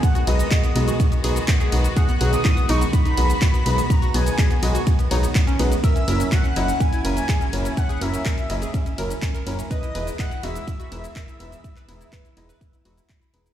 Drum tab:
RD |x-x-x-x-x-x-x-x-|x-x-x-x-x-x-x-x-|x-x-x-x-x-x-x-x-|x-x-x-x-x-x-x-x-|
HH |xxoxxxoxxxoxxxox|xxoxxxoxxxoxxxox|xxoxxxoxxxoxxxox|xxoxxxoxxxoxxxox|
SH |xx-xxx-xxx-xxx-x|xx-xxx-xxx-xxx-x|xx-xxx-xxx-xxx-x|xx-xxx-xxx-xxx-x|
CP |----x-------x---|----x-------x---|----x-------x---|----x-------x---|
BD |o---o---o---o---|o---o---o---o---|o---o---o---o---|o---o---o---o---|

RD |x-x-x-x-x-x-x-x-|x-x-x-x-x-x-x-x-|x-x-x-x-x-x-x-x-|
HH |xxoxxxoxxxoxxxox|xxoxxxoxxxoxxxox|xxoxxxoxxxoxxxox|
SH |xx-xxx-xxx-xxx-x|xx-xxx-xxx-xxx-x|xx-xxx-xxx-xxx-x|
CP |----x-------x---|----x-------x---|-x--x-------x---|
BD |o---o---o---o---|o---o---o---o---|o---o---o---o---|